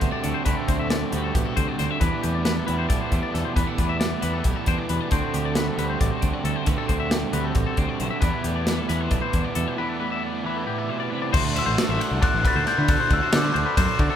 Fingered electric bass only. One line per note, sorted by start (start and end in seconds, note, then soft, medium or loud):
0.02 0.11 D2 medium
0.25 0.33 D2 medium
0.47 0.55 D2 medium
0.69 1.03 D2 medium
1.13 1.30 D2 medium
1.35 1.44 A1 medium
1.57 1.66 D2 medium
1.80 1.88 D2 medium
2.02 2.10 E2 medium
2.24 2.59 E2 medium
2.69 2.86 E2 medium
2.90 2.99 B1 medium
3.12 3.21 E2 medium
3.34 3.43 E2 medium
3.57 3.65 E2 medium
3.79 4.13 E2 medium
4.23 4.41 E2 medium
4.45 4.54 B1 medium
4.67 4.76 E2 medium
4.90 4.98 E2 medium
5.12 5.20 D2 medium
5.34 5.69 D2 medium
5.78 5.95 D2 medium
6.01 6.09 A1 medium
6.23 6.31 D2 medium
6.44 6.53 D2 medium
6.68 6.76 D2 medium
6.89 7.24 D2 medium
7.33 7.51 D2 medium
7.56 7.64 A1 medium
7.78 7.86 D2 medium
8.00 8.09 B1 medium
8.22 8.31 E2 loud
8.44 8.79 E2 medium
8.90 9.07 E2 medium
9.12 9.20 B1 medium
9.34 9.42 E2 medium
9.56 9.65 E2 medium
11.34 11.60 D2 medium
11.67 11.75 A1 medium
11.89 11.97 A1 medium
12.11 12.20 C2 loud
12.34 12.42 A1 medium
12.56 12.64 D2 loud
12.78 12.95 D3 medium
13.11 13.19 D2 medium
13.33 13.50 D3 loud
13.55 13.64 D2 medium
13.78 13.86 F#2 loud
13.99 14.08 D3 loud